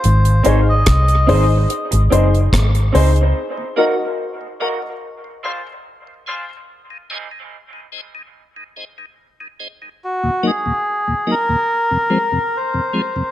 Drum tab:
HH |xxx-xxo-xxxxxxox|----------------|----------------|----------------|
SD |----r-------r---|----------------|----------------|----------------|
BD |----o-------o---|----------------|----------------|----------------|